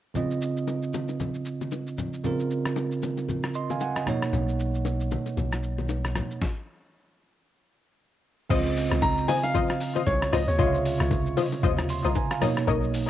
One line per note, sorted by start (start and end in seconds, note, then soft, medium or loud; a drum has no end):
0.15 2.20 C#3 medium
0.15 2.20 C4 medium
0.15 2.21 F4 medium
0.15 2.21 D#5 medium
0.15 low conga medium
0.15 shaker medium
0.31 shaker soft
0.42 shaker medium
0.57 shaker medium
0.68 high bongo medium
0.68 shaker medium
0.83 shaker medium
0.94 high bongo medium
0.94 low bongo medium
0.94 shaker medium
1.09 high bongo soft
1.09 shaker soft
1.20 low bongo medium
1.20 low conga medium
1.20 shaker medium
1.34 shaker soft
1.45 shaker medium
1.61 low bongo medium
1.61 shaker medium
1.72 high bongo medium
1.72 shaker medium
1.87 shaker medium
1.98 low conga medium
1.98 shaker medium
2.13 shaker medium
2.23 4.03 C#3 medium
2.23 4.03 C4 medium
2.23 4.04 F4 medium
2.23 4.04 A#4 medium
2.23 low conga medium
2.23 shaker medium
2.40 shaker soft
2.51 shaker medium
2.65 cross-stick medium
2.65 shaker medium
2.76 high bongo medium
2.76 shaker medium
2.91 shaker medium
3.02 high bongo medium
3.02 low bongo medium
3.02 shaker medium
3.17 high bongo soft
3.17 shaker soft
3.28 low bongo medium
3.28 low conga medium
3.28 shaker medium
3.43 cross-stick medium
3.43 shaker medium
3.54 3.69 D#5 medium
3.54 3.69 C6 medium
3.54 shaker medium
3.70 3.80 F5 medium
3.70 3.80 G#5 medium
3.70 low bongo medium
3.70 shaker medium
3.80 4.29 F#5 medium
3.80 3.95 G#5 medium
3.80 high bongo medium
3.80 shaker medium
3.96 4.21 D#5 medium
3.96 cross-stick medium
3.96 shaker medium
4.06 6.11 B2 medium
4.06 6.11 A#3 medium
4.06 6.12 D#4 medium
4.06 6.12 C#5 medium
4.06 cross-stick medium
4.06 low conga medium
4.06 shaker medium
4.22 cross-stick medium
4.22 shaker medium
4.33 5.16 B1 medium
4.33 low conga medium
4.33 shaker medium
4.48 shaker soft
4.59 shaker medium
4.74 shaker medium
4.85 high bongo medium
4.85 shaker medium
5.00 shaker medium
5.11 high bongo medium
5.11 low bongo medium
5.11 shaker loud
5.26 high bongo medium
5.26 shaker soft
5.37 6.21 B1 loud
5.37 low bongo medium
5.37 low conga medium
5.37 shaker medium
5.52 cross-stick medium
5.52 shaker medium
5.63 shaker medium
5.78 low bongo medium
5.78 shaker medium
5.89 high bongo medium
5.89 shaker medium
6.05 cross-stick medium
6.05 shaker medium
6.15 cross-stick medium
6.15 low conga medium
6.15 shaker medium
6.31 shaker medium
6.42 kick loud
6.42 snare medium
8.49 8.89 C#2 loud
8.49 10.55 C#3 medium
8.49 10.55 C4 medium
8.49 8.99 F4 loud
8.49 10.56 F4 medium
8.49 8.99 C5 medium
8.49 8.99 D#5 loud
8.49 10.56 D#5 medium
8.49 kick loud
8.49 crash loud
8.49 low conga medium
8.49 shaker medium
8.66 shaker medium
8.77 open hi-hat medium
8.77 shaker loud
8.92 9.27 C#2 loud
8.92 cross-stick loud
8.92 low bongo medium
8.92 shaker medium
9.02 9.29 A#5 loud
9.02 kick loud
9.02 high bongo medium
9.02 shaker medium
9.18 shaker medium
9.28 9.38 F4 medium
9.28 9.38 C5 medium
9.28 9.38 D#5 medium
9.28 9.42 G#5 loud
9.28 open hi-hat medium
9.28 high bongo medium
9.28 low bongo medium
9.28 shaker loud
9.43 10.09 F5 loud
9.43 high bongo medium
9.43 shaker medium
9.54 9.92 F4 loud
9.54 9.92 C5 medium
9.54 9.92 D#5 loud
9.54 kick loud
9.54 low bongo medium
9.54 low conga medium
9.54 shaker medium
9.69 cross-stick medium
9.69 shaker medium
9.80 open hi-hat medium
9.80 shaker medium
9.95 10.02 F4 medium
9.95 10.03 C5 medium
9.95 10.03 D#5 medium
9.95 low bongo medium
9.95 shaker medium
10.06 10.31 C2 loud
10.06 10.34 C#5 medium
10.06 kick medium
10.06 high bongo medium
10.06 shaker medium
10.22 cross-stick loud
10.22 shaker medium
10.33 10.47 C#2 medium
10.33 10.42 F4 medium
10.33 10.42 C5 medium
10.33 10.47 D#5 medium
10.33 10.42 D#5 medium
10.33 cross-stick loud
10.33 open hi-hat medium
10.33 low conga medium
10.33 shaker medium
10.48 10.58 D#2 loud
10.48 10.57 C#5 medium
10.48 shaker medium
10.58 10.98 C#2 loud
10.58 11.87 C3 medium
10.58 11.86 C#3 medium
10.58 11.07 F4 loud
10.58 11.87 F4 medium
10.58 11.33 C#5 medium
10.58 11.08 D#5 loud
10.58 10.67 E5 medium
10.58 11.08 C6 medium
10.58 kick loud
10.58 low conga medium
10.58 shaker medium
10.67 11.91 F5 medium
10.74 shaker medium
10.85 open hi-hat medium
10.85 shaker loud
11.00 11.35 C#2 loud
11.00 cross-stick loud
11.00 low bongo medium
11.00 shaker medium
11.11 kick loud
11.11 high bongo medium
11.11 shaker medium
11.26 shaker medium
11.37 11.46 F4 medium
11.37 11.46 C5 medium
11.37 11.47 D#5 medium
11.37 open hi-hat medium
11.37 high bongo medium
11.37 low bongo medium
11.37 shaker loud
11.52 high bongo medium
11.52 shaker medium
11.63 12.02 D#2 loud
11.63 12.01 F4 loud
11.63 12.01 C5 medium
11.63 12.01 D#5 loud
11.63 kick loud
11.63 low bongo medium
11.63 low conga medium
11.63 shaker medium
11.78 cross-stick loud
11.78 shaker medium
11.89 12.04 C6 medium
11.89 open hi-hat soft
11.89 shaker medium
12.04 12.15 C2 loud
12.04 12.11 F4 medium
12.04 12.11 C5 medium
12.04 12.11 D#5 medium
12.04 12.15 A#5 medium
12.04 low bongo medium
12.04 shaker medium
12.15 12.30 G#5 medium
12.15 kick medium
12.15 high bongo medium
12.15 shaker medium
12.31 12.56 F5 medium
12.31 cross-stick loud
12.31 shaker medium
12.41 13.10 B2 medium
12.41 13.10 A#3 medium
12.41 13.10 D#4 medium
12.41 12.51 A#4 medium
12.41 12.51 C#5 medium
12.41 13.10 C#5 medium
12.41 12.51 D#5 medium
12.41 cross-stick loud
12.41 open hi-hat medium
12.41 low conga medium
12.41 shaker medium
12.57 cross-stick loud
12.57 shaker medium
12.67 13.07 B1 loud
12.67 13.10 A#4 loud
12.67 13.10 C#5 medium
12.67 13.10 D#5 loud
12.67 kick loud
12.67 low conga medium
12.67 shaker medium
12.83 shaker medium
12.94 open hi-hat medium
12.94 shaker medium